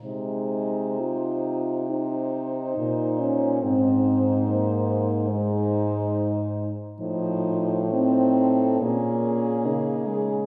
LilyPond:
<<
  \new Staff \with { instrumentName = "French horn" } { \time 4/4 \key aes \major \tempo 4 = 70 c''2 c''2 | c''2 c''4. r8 | c''4 c''8 a'8 aes'2 | }
  \new Staff \with { instrumentName = "French horn" } { \time 4/4 \key aes \major ees'2 ees'2 | ees'2 ees'4. r8 | ees'4 ees'4 des'4 ees'4 | }
  \new Staff \with { instrumentName = "French horn" } { \time 4/4 \key aes \major aes4 f'4 ees'4. des'8 | c'4 bes4 aes4. r8 | f4 c'4 bes4. aes8 | }
  \new Staff \with { instrumentName = "French horn" } { \clef bass \time 4/4 \key aes \major c2. bes,4 | aes,2.~ aes,8 r8 | a,2 bes,4 des4 | }
>>